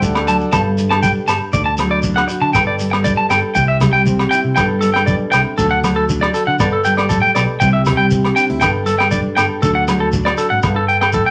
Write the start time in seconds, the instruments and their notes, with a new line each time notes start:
0.01 fingered electric bass D2, steel-string acoustic guitar D3, harmonium A4 D5 F#5, kick, muted conga, high conga, shekere
0.15 cross-stick, low agogo
0.27 steel-string acoustic guitar F#3, clean electric guitar A5, closed hi-hat, shekere
0.41 shekere
0.52 fingered electric bass G1, steel-string acoustic guitar G2 G3 D4 A4, clean electric guitar A5, kick, cross-stick, low agogo, shekere
0.78 steel-string acoustic guitar G3, closed hi-hat, shekere
0.91 clean electric guitar A5, cross-stick, low agogo
1.03 steel-string acoustic guitar D4, clean electric guitar G5, kick, high conga, shekere
1.28 fingered electric bass G1, clean electric guitar A5, cross-stick, closed hi-hat, low agogo, shekere
1.53 fingered electric bass D2, steel-string acoustic guitar D3, clean electric guitar D5, muted steel-string acoustic guitar stroke, kick, muted conga, shekere
1.66 clean electric guitar A5
1.78 steel-string acoustic guitar F#3, cross-stick, closed hi-hat, high conga, low agogo, shekere
1.91 clean electric guitar D5
2.03 steel-string acoustic guitar D4, kick, high conga, shekere
2.16 clean electric guitar F#5, cross-stick, low agogo
2.28 steel-string acoustic guitar F#4, muted clean electric guitar stroke, closed hi-hat, muted conga, shekere
2.41 fingered electric bass D3, clean electric guitar A5
2.53 fingered electric bass G1, steel-string acoustic guitar G2 A4, clean electric guitar G5, kick, cross-stick, muted conga, low agogo, shekere
2.67 clean electric guitar D5
2.79 steel-string acoustic guitar G3, closed hi-hat, shekere
2.91 muted clean electric guitar stroke, cross-stick, low agogo
3.04 steel-string acoustic guitar D4, clean electric guitar D5, kick, high conga, shekere
3.17 clean electric guitar A5
3.30 fingered electric bass G1, steel-string acoustic guitar A4, clean electric guitar G5, cross-stick, closed hi-hat, low agogo, shekere
3.55 fingered electric bass C2, steel-string acoustic guitar C3 G4, clean electric guitar G5, kick, shekere
3.68 clean electric guitar E5
3.80 steel-string acoustic guitar G3, cross-stick, closed hi-hat, high conga, low conga, low agogo, shekere
3.93 clean electric guitar G5
4.06 steel-string acoustic guitar C4, kick, high conga, shekere
4.19 cross-stick, low agogo
4.31 steel-string acoustic guitar E4, clean electric guitar G5, closed hi-hat, muted conga, shekere
4.44 fingered electric bass C3
4.56 fingered electric bass G1, steel-string acoustic guitar G2 G3 D4, clean electric guitar G5, kick, cross-stick, low agogo, shekere
4.60 steel-string acoustic guitar A4
4.81 steel-string acoustic guitar G3, clean electric guitar A4, closed hi-hat, shekere
4.94 clean electric guitar G5, cross-stick, low agogo
5.06 steel-string acoustic guitar B2, clean electric guitar D5, kick, high conga, shekere
5.32 fingered electric bass C2, steel-string acoustic guitar C3, clean electric guitar G5, cross-stick, closed hi-hat, low agogo, shekere
5.58 fingered electric bass D2, steel-string acoustic guitar D3 F#3 D4 F#4 A4, clean electric guitar A4, kick, muted conga, shekere
5.71 clean electric guitar F#5
5.84 steel-string acoustic guitar F#3, cross-stick, closed hi-hat, high conga, low agogo, shekere
5.96 clean electric guitar A4
6.09 steel-string acoustic guitar D4, kick, high conga, shekere
6.21 clean electric guitar D5, cross-stick, low agogo
6.34 steel-string acoustic guitar F#4, clean electric guitar A4, closed hi-hat, muted conga, shekere
6.47 fingered electric bass D3, clean electric guitar F#5
6.59 fingered electric bass G1, steel-string acoustic guitar G2 A4, clean electric guitar D5, kick, cross-stick, low agogo, shekere
6.73 clean electric guitar A4
6.85 steel-string acoustic guitar G3, clean electric guitar G5, closed hi-hat, muted conga, shekere
6.97 clean electric guitar D5, cross-stick, low agogo
7.09 steel-string acoustic guitar A2, clean electric guitar A4, kick, high conga, shekere
7.22 clean electric guitar G5
7.35 fingered electric bass B1, steel-string acoustic guitar B2, clean electric guitar D5, cross-stick, closed hi-hat, low agogo, shekere
7.60 fingered electric bass C2, steel-string acoustic guitar C3 G3 C4 E4 G4, clean electric guitar G5, kick, muted conga, shekere
7.73 clean electric guitar E5
7.85 steel-string acoustic guitar G3, cross-stick, closed hi-hat, high conga, low conga, low agogo, shekere
7.97 clean electric guitar G5
8.11 steel-string acoustic guitar C4, kick, high conga, shekere
8.24 cross-stick, low agogo
8.36 steel-string acoustic guitar D4, clean electric guitar G5, closed hi-hat, muted conga, shekere
8.50 fingered electric bass D2, steel-string acoustic guitar E4
8.61 fingered electric bass G1, steel-string acoustic guitar G2 G3 D4 A4, clean electric guitar G5, kick, cross-stick, muted conga, low agogo, shekere
8.86 steel-string acoustic guitar G3, clean electric guitar A4, closed hi-hat, muted conga, shekere
8.99 clean electric guitar G5, cross-stick, low agogo
9.11 steel-string acoustic guitar D4, clean electric guitar D5, kick, high conga, shekere
9.37 fingered electric bass G1, steel-string acoustic guitar A4, clean electric guitar G5, cross-stick, closed hi-hat, low agogo, shekere
9.62 fingered electric bass D2, steel-string acoustic guitar D3 F#3 D4 F#4 A4, clean electric guitar A4, kick, shekere
9.75 clean electric guitar F#5
9.87 steel-string acoustic guitar F#3, cross-stick, closed hi-hat, high conga, low agogo, shekere
10.00 clean electric guitar A4
10.12 steel-string acoustic guitar D4, kick, high conga, shekere
10.25 clean electric guitar D5, cross-stick, low agogo
10.38 steel-string acoustic guitar F#4, clean electric guitar A4, closed hi-hat, muted conga, shekere
10.50 fingered electric bass G#1, clean electric guitar F#5
10.63 fingered electric bass G1, steel-string acoustic guitar G2 A4, muted clean electric guitar stroke, kick, cross-stick, low agogo, shekere
10.76 clean electric guitar A4
10.88 clean electric guitar G5, closed hi-hat, muted conga
11.01 clean electric guitar G5, cross-stick, low agogo
11.13 steel-string acoustic guitar A2, clean electric guitar A4, kick, high conga, shekere
11.26 clean electric guitar G5